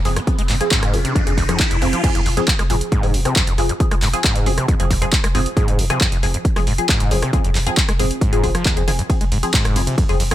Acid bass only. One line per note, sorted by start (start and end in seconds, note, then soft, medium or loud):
0.05 0.09 F2 medium
0.16 0.20 F2 medium
0.38 0.42 G#3 medium
0.49 0.56 G#2 medium
0.71 0.95 G#2 loud
0.93 1.00 F2 medium
1.05 1.14 C3 medium
1.15 1.22 F2 loud
1.27 1.33 F2 medium
1.38 1.44 F2 medium
1.49 1.58 F2 medium
1.71 1.77 F2 medium
1.82 1.88 F2 medium
1.93 2.02 F3 medium
2.04 2.10 F2 loud
2.15 2.21 F2 medium
2.26 2.29 F2 medium
2.37 2.41 F2 medium
2.59 2.63 G#3 medium
2.70 2.76 G#2 medium
2.92 3.15 G#2 loud
3.14 3.20 F2 medium
3.25 3.34 C3 medium
3.36 3.42 F2 loud
3.47 3.53 F2 medium
3.58 3.62 F2 medium
3.69 3.73 F2 medium
3.91 3.95 G#3 medium
4.02 4.08 G#2 medium
4.24 4.48 G#2 loud
4.46 4.53 F2 medium
4.58 4.67 C3 medium
4.68 4.75 F2 loud
4.80 4.86 F2 medium
4.90 4.94 F2 medium
5.02 5.05 F2 medium
5.24 5.27 G#3 medium
5.35 5.41 G#2 medium
5.57 5.80 G#2 loud
5.79 5.85 F2 medium
5.90 5.99 C3 medium
6.01 6.07 F2 loud
6.12 6.18 F2 medium
6.23 6.27 F2 medium
6.34 6.38 F2 medium
6.56 6.60 G#3 medium
6.67 6.73 G#2 medium
6.89 7.13 G#2 loud
7.11 7.17 F2 medium
7.22 7.31 C3 medium
7.33 7.39 F2 loud
7.44 7.50 F2 medium
7.55 7.59 F2 medium
7.66 7.70 F2 medium
7.89 7.92 G#3 medium
7.99 8.06 G#2 medium
8.22 8.45 G#2 loud
8.44 8.50 F2 medium
8.55 8.64 F3 loud
8.66 8.78 D#2 medium
8.77 8.83 F2 medium
8.88 8.91 D#3 medium
8.99 9.02 F2 loud
9.21 9.24 G#3 medium
9.32 9.38 G#2 medium
9.54 9.77 G#2 loud
9.76 9.82 F2 medium
9.87 9.96 C3 medium
9.98 10.04 F2 loud
10.09 10.15 F2 medium
10.20 10.24 F2 medium
10.31 10.35 F2 medium